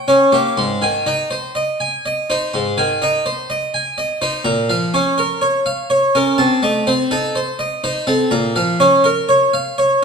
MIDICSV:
0, 0, Header, 1, 2, 480
1, 0, Start_track
1, 0, Key_signature, -4, "major"
1, 0, Tempo, 988468
1, 280, Time_signature, 4, 2, 24, 8
1, 1236, Tempo, 964630
1, 4967, End_track
2, 0, Start_track
2, 0, Title_t, "Harpsichord"
2, 0, Program_c, 0, 6
2, 38, Note_on_c, 0, 61, 52
2, 39, Note_on_c, 0, 73, 50
2, 157, Note_on_c, 0, 58, 43
2, 157, Note_on_c, 0, 67, 48
2, 165, Note_off_c, 0, 61, 0
2, 166, Note_off_c, 0, 73, 0
2, 278, Note_on_c, 0, 44, 65
2, 279, Note_on_c, 0, 84, 80
2, 280, Note_off_c, 0, 58, 0
2, 280, Note_off_c, 0, 67, 0
2, 397, Note_off_c, 0, 44, 0
2, 397, Note_on_c, 0, 51, 47
2, 399, Note_on_c, 0, 80, 52
2, 407, Note_off_c, 0, 84, 0
2, 517, Note_on_c, 0, 63, 52
2, 517, Note_on_c, 0, 75, 53
2, 525, Note_off_c, 0, 51, 0
2, 526, Note_off_c, 0, 80, 0
2, 634, Note_on_c, 0, 72, 52
2, 644, Note_off_c, 0, 63, 0
2, 645, Note_off_c, 0, 75, 0
2, 754, Note_on_c, 0, 75, 53
2, 763, Note_off_c, 0, 72, 0
2, 875, Note_on_c, 0, 80, 56
2, 882, Note_off_c, 0, 75, 0
2, 998, Note_on_c, 0, 75, 61
2, 1003, Note_off_c, 0, 80, 0
2, 1116, Note_on_c, 0, 63, 50
2, 1117, Note_on_c, 0, 72, 55
2, 1124, Note_off_c, 0, 75, 0
2, 1231, Note_on_c, 0, 84, 61
2, 1234, Note_on_c, 0, 44, 53
2, 1241, Note_off_c, 0, 63, 0
2, 1242, Note_off_c, 0, 72, 0
2, 1351, Note_on_c, 0, 51, 49
2, 1351, Note_on_c, 0, 80, 54
2, 1352, Note_off_c, 0, 44, 0
2, 1360, Note_off_c, 0, 84, 0
2, 1472, Note_on_c, 0, 75, 60
2, 1473, Note_on_c, 0, 63, 53
2, 1479, Note_off_c, 0, 51, 0
2, 1480, Note_off_c, 0, 80, 0
2, 1591, Note_on_c, 0, 72, 59
2, 1599, Note_off_c, 0, 75, 0
2, 1600, Note_off_c, 0, 63, 0
2, 1710, Note_on_c, 0, 75, 58
2, 1718, Note_off_c, 0, 72, 0
2, 1831, Note_on_c, 0, 80, 54
2, 1837, Note_off_c, 0, 75, 0
2, 1949, Note_on_c, 0, 75, 56
2, 1957, Note_off_c, 0, 80, 0
2, 2067, Note_on_c, 0, 72, 56
2, 2068, Note_on_c, 0, 63, 54
2, 2076, Note_off_c, 0, 75, 0
2, 2181, Note_on_c, 0, 46, 69
2, 2182, Note_on_c, 0, 82, 83
2, 2188, Note_off_c, 0, 72, 0
2, 2189, Note_off_c, 0, 63, 0
2, 2302, Note_off_c, 0, 46, 0
2, 2305, Note_on_c, 0, 77, 55
2, 2306, Note_on_c, 0, 53, 54
2, 2312, Note_off_c, 0, 82, 0
2, 2427, Note_on_c, 0, 61, 54
2, 2428, Note_on_c, 0, 73, 64
2, 2433, Note_off_c, 0, 77, 0
2, 2434, Note_off_c, 0, 53, 0
2, 2546, Note_on_c, 0, 70, 61
2, 2554, Note_off_c, 0, 61, 0
2, 2555, Note_off_c, 0, 73, 0
2, 2664, Note_on_c, 0, 73, 57
2, 2674, Note_off_c, 0, 70, 0
2, 2785, Note_on_c, 0, 77, 66
2, 2793, Note_off_c, 0, 73, 0
2, 2905, Note_on_c, 0, 73, 65
2, 2914, Note_off_c, 0, 77, 0
2, 3030, Note_on_c, 0, 61, 55
2, 3030, Note_on_c, 0, 70, 59
2, 3034, Note_off_c, 0, 73, 0
2, 3145, Note_on_c, 0, 48, 73
2, 3145, Note_on_c, 0, 81, 76
2, 3151, Note_off_c, 0, 61, 0
2, 3151, Note_off_c, 0, 70, 0
2, 3265, Note_off_c, 0, 48, 0
2, 3266, Note_on_c, 0, 57, 56
2, 3268, Note_on_c, 0, 75, 66
2, 3274, Note_off_c, 0, 81, 0
2, 3388, Note_on_c, 0, 72, 64
2, 3389, Note_on_c, 0, 60, 57
2, 3395, Note_off_c, 0, 57, 0
2, 3396, Note_off_c, 0, 75, 0
2, 3508, Note_on_c, 0, 69, 67
2, 3509, Note_on_c, 0, 63, 67
2, 3516, Note_off_c, 0, 60, 0
2, 3516, Note_off_c, 0, 72, 0
2, 3629, Note_on_c, 0, 72, 60
2, 3636, Note_off_c, 0, 63, 0
2, 3636, Note_off_c, 0, 69, 0
2, 3747, Note_on_c, 0, 75, 60
2, 3756, Note_off_c, 0, 72, 0
2, 3869, Note_on_c, 0, 72, 65
2, 3870, Note_on_c, 0, 63, 56
2, 3875, Note_off_c, 0, 75, 0
2, 3985, Note_on_c, 0, 69, 57
2, 3986, Note_on_c, 0, 60, 56
2, 3996, Note_off_c, 0, 63, 0
2, 3996, Note_off_c, 0, 72, 0
2, 4105, Note_on_c, 0, 46, 74
2, 4105, Note_on_c, 0, 82, 96
2, 4107, Note_off_c, 0, 69, 0
2, 4108, Note_off_c, 0, 60, 0
2, 4224, Note_off_c, 0, 46, 0
2, 4227, Note_on_c, 0, 53, 57
2, 4228, Note_on_c, 0, 77, 63
2, 4233, Note_off_c, 0, 82, 0
2, 4349, Note_on_c, 0, 61, 59
2, 4349, Note_on_c, 0, 73, 66
2, 4355, Note_off_c, 0, 53, 0
2, 4355, Note_off_c, 0, 77, 0
2, 4469, Note_on_c, 0, 70, 65
2, 4476, Note_off_c, 0, 61, 0
2, 4476, Note_off_c, 0, 73, 0
2, 4591, Note_on_c, 0, 73, 68
2, 4597, Note_off_c, 0, 70, 0
2, 4714, Note_on_c, 0, 77, 67
2, 4720, Note_off_c, 0, 73, 0
2, 4837, Note_on_c, 0, 73, 65
2, 4842, Note_off_c, 0, 77, 0
2, 4965, Note_off_c, 0, 73, 0
2, 4967, End_track
0, 0, End_of_file